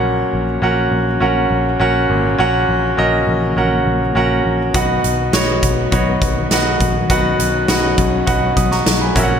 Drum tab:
HH |----------------|----------------|x-x-x-x-x-x-x-x-|x-x-x-x-x-x-x-x-|
SD |----------------|----------------|----o-------o---|----o------oo---|
BD |----------------|----------------|o-----o-o-o---o-|o-----o-o-o---o-|